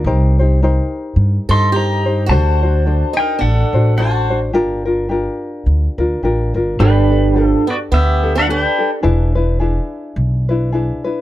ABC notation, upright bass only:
X:1
M:4/4
L:1/8
Q:"Swing" 1/4=107
K:Gm
V:1 name="Upright bass" clef=bass
C,,4 G,, G,,3 | D,,4 A,,, A,,,3 | G,,,4 D,, D,, A,,, G,,, | [K:G] G,,,4 D,,4 |
E,,,4 B,,,4 |]